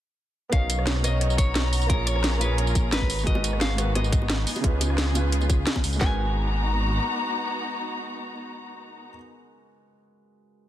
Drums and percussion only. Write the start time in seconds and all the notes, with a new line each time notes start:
0.53 kick, closed hi-hat
0.70 closed hi-hat, tambourine
0.79 cross-stick
0.87 snare, closed hi-hat
0.96 cross-stick
1.04 cross-stick, closed hi-hat, tambourine
1.21 cross-stick, closed hi-hat
1.30 tambourine
1.38 kick, closed hi-hat, tambourine
1.55 snare, closed hi-hat
1.73 open hi-hat, tambourine
1.82 tambourine
1.90 kick, closed hi-hat
2.07 closed hi-hat, tambourine
2.16 cross-stick
2.24 snare, closed hi-hat
2.33 cross-stick
2.41 closed hi-hat, tambourine
2.58 closed hi-hat
2.67 tambourine
2.75 kick, closed hi-hat, tambourine
2.92 snare, closed hi-hat
3.01 kick
3.10 open hi-hat, tambourine
3.19 tambourine
3.27 kick, closed hi-hat
3.35 high bongo
3.44 closed hi-hat, tambourine
3.53 cross-stick
3.61 snare, closed hi-hat, high bongo
3.70 cross-stick
3.78 cross-stick, closed hi-hat, tambourine
3.95 cross-stick, closed hi-hat, high bongo
4.04 tambourine
4.12 kick, closed hi-hat, tambourine
4.22 high bongo
4.30 snare, closed hi-hat
4.47 open hi-hat, tambourine
4.56 tambourine, high bongo
4.64 kick, closed hi-hat
4.81 closed hi-hat, tambourine, high bongo
4.90 cross-stick
4.98 snare, closed hi-hat
5.07 cross-stick
5.15 closed hi-hat, tambourine, high bongo
5.32 closed hi-hat
5.41 tambourine, high bongo
5.50 kick, closed hi-hat, tambourine
5.67 snare, closed hi-hat
5.76 kick, high bongo
5.84 open hi-hat, tambourine
5.93 tambourine
6.01 kick, snare, clap